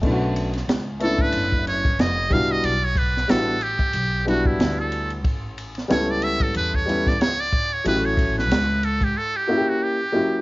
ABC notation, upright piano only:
X:1
M:4/4
L:1/8
Q:"Swing 16ths" 1/4=92
K:Bm
V:1 name="Upright piano"
[A,B,CDEF] z2 [A,B,CDE]3 z [G,B,DEF] | z2 [G,B,DEF] z2 [G,B,DEF]3 | z2 [G,B,CEA]3 [G,B,CEA] z2 | [F,A,CEGA]3 z2 [^A,CEFG] z [F,A,CEG] |]